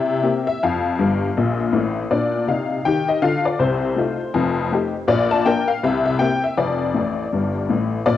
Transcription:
honky-tonk piano
Already playing: C3 E4 E5
0.23 A#3 C4 G4
0.47 E5
0.63 F2 F5
0.99 G1 G2
1.37 A#1 A#2
1.72 A1 A2
2.11 A#2 D4 D5
2.47 C3 D#4 F5
2.85 D#3 G4 G5
3.09 D#5
3.22 D3 F4 F5
3.46 D5
3.59 C2 C3 C5
3.96 A3 D#4 F4
4.34 F1 F2
4.72 A3 D#4 G4
5.08 A#1 A#2 D5
5.31 A5
5.46 A#3 D4 A#4 G5
5.68 F5
5.83 C2 C3 E5
6.05 E5
6.19 A#3 C4 G4 G5
6.44 E5
6.57 F1 F2 D5
6.94 A1 A2
7.33 G1 G2
7.69 A1 A2
8.06 A#1 A#2 D5

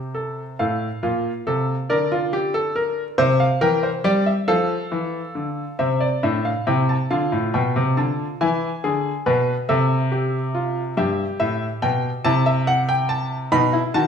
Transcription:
grand piano
Already playing: C3 C5
0.15 A4
0.59 A2 A4 F5
1.03 A#2 F4
1.47 C3 A4
1.90 D3 A#4 D5
2.12 F4
2.33 G4
2.54 A4
2.76 A#4
3.18 C3 C5 E5
3.40 F5
3.61 E3 A#4 G5
3.83 C5
4.04 G3 G4 D5
4.26 E5
4.48 F3 A4 F5
4.92 E3
5.35 D3
5.79 C3 C4 E5
6.00 D5
6.23 A2 D4 E5
6.45 F5
6.67 C3 E4 G5
6.89 A5
7.11 D3 F4 F5
7.32 A2
7.54 B2 G5
7.76 C3
7.97 D3 A5
8.41 E3 E4 G#5
8.84 D3 G#4
9.26 B2 B4
9.69 C3 A4 E5
10.12 G4
10.55 F4
10.97 G2 G4 E5
11.40 A2 E5
11.82 B2 G5
12.24 C3 E4 A5
12.46 E5
12.67 F#5
12.89 G5
13.09 A5
13.52 B2 D#4 B5
13.73 E4
13.94 D#3 F#4 A5

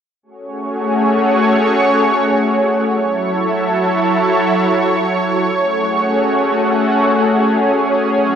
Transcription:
analog synth pad
0.23 A3 C#4 F#4 G#4 C#5
2.87 F#3 E4 A4 C#5
5.50 A3 C#4 F#4 G#4
8.14 F#3 F#4

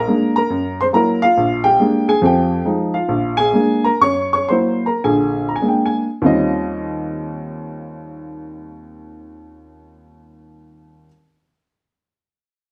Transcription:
upright piano
Already playing: A#4 A#5
0.07 G#3 A#3 D4
0.36 A#4 A#5
0.50 F#2
0.81 C5 C6
0.93 F#3 A#3 E4 A#4 A#5
1.22 F4 F5
1.37 A#1
1.64 G4 G5
1.80 G#3 A#3 D4
2.08 G#4 G#5
2.22 F2 F3 G4
2.26 G5
2.65 F3 G#3 D#4
2.94 F4 F5
3.09 A#1
3.37 G#4 G#5
3.53 G#3 A#3 D4
3.84 A#4 A#5
4.01 F#2 C#5 C#6
4.33 C#5 C#6
4.49 F#3 A#3 E4 C5 C6
4.86 A#4 A#5
5.04 A#1 D3 G#4 G#5
5.49 A#5
5.56 G#5
5.61 G#3 A#3 D4
5.68 G5
5.86 G#5
6.22 D#2 D#3 G3 C4 C#4 F4
6.26 D#5

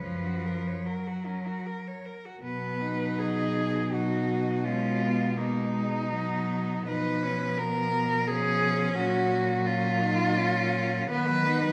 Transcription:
cello
Already playing: B4
0.03 F#2 F3 C#4
0.25 F#4
0.46 A#4
0.67 C#5
0.86 F#3 A#4
1.07 F#4
1.26 C#4
1.47 F#4
1.67 A#4
1.87 C#5
2.06 A#4
2.26 F#4
2.42 B2 F#3 B3 B4
2.80 D#4
3.18 G#4
3.91 F#3 D#4 F#4
4.64 G#3 C#4 F4
5.02 B3
5.36 G#3 A#3 D#4
5.73 G#3
6.08 F#3 B3
6.86 B2 F3 D#4 B4
7.23 C#4
7.58 B3 A#4
8.27 F3 C#4 G#4
8.97 A#2 F#3 F#4
9.66 C#4 F4
10.01 D#4
10.36 C#4
11.10 D#3 B3 B4
11.28 F#3
11.46 B3 D#4
11.63 F#3

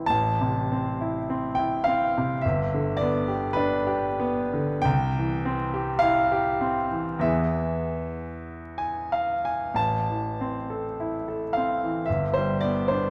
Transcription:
grand piano
Already playing: E3 C4 E4
0.06 A1 A5
0.41 C3
0.72 C4
1.01 E4
1.30 C4
1.55 E4 G5
1.84 C4 F5
2.17 C3
2.41 G1 E5
2.74 D3
2.97 D5
3.01 B3
3.28 G4
3.53 D4 B4
3.87 G4
4.20 B3
4.53 D3
4.82 C2 G5
5.17 E3
5.45 C4
5.74 G4
5.99 E4 F5
6.32 G4
6.61 C4
6.91 E3
7.19 E2 E3 B3 G#4 E5
8.78 G#5
9.12 F5
9.45 G#5
9.74 A1 A5
10.10 E3
10.41 C4
10.70 A4
11.00 E4
11.28 A4
11.53 C4 F5
11.84 E3
12.06 G1 E5
12.34 G3 C5
12.61 B3 D5
12.88 D4 C5

